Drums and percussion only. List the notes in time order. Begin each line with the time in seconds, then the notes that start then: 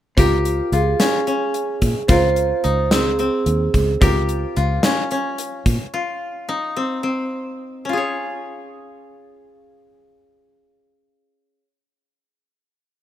0.18 kick, closed hi-hat
0.45 closed hi-hat
0.73 closed hi-hat
1.00 snare, closed hi-hat
1.27 closed hi-hat
1.54 closed hi-hat
1.82 kick, closed hi-hat
2.08 kick, closed hi-hat
2.36 closed hi-hat
2.64 closed hi-hat
2.91 snare, closed hi-hat
3.19 closed hi-hat
3.46 closed hi-hat
3.74 kick, closed hi-hat
4.02 kick, closed hi-hat
4.29 closed hi-hat
4.56 closed hi-hat
4.83 snare, closed hi-hat
5.11 closed hi-hat
5.38 closed hi-hat
5.66 kick, closed hi-hat